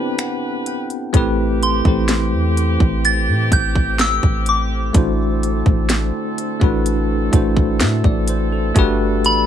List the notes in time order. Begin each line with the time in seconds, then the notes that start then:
Already playing: D3 B3 C4 D4 E4 G4 A4 B4 A5
0.19 F#5, finger snap, closed hi-hat
0.66 G5, closed hi-hat
0.90 closed hi-hat
1.13 A1 E3 A3 C4 E4 G4, kick, closed hi-hat
1.17 B4
1.63 C6, closed hi-hat
1.84 A1 A3 C4 E4 G4 C5, kick
2.08 snare, closed hi-hat
2.33 E2
2.57 closed hi-hat
2.80 A1, kick
3.05 A6, closed hi-hat
3.28 A2
3.52 A1 G6, kick, closed hi-hat
3.75 kick
3.99 E6, snare, closed hi-hat
4.23 A1, kick
4.46 D6, closed hi-hat
4.93 A1 D3 A3 D4 E4 F#4 A4, kick, closed hi-hat
4.97 C5
5.43 closed hi-hat
5.66 A1, kick
5.89 snare, closed hi-hat
6.38 closed hi-hat
6.60 A1 A3 D4 E4 F#4 B4, kick
6.86 closed hi-hat
7.31 A1 A3 D4 E4 F#4, kick, closed hi-hat
7.35 C5
7.57 kick
7.80 A2 E5, snare, closed hi-hat
8.04 A1 D5, kick
8.28 C5, closed hi-hat
8.52 A4
8.74 G1 D3 G3 A3 B3 D4 F#4 G4, kick, closed hi-hat
8.79 B4
9.24 A1 B5, closed hi-hat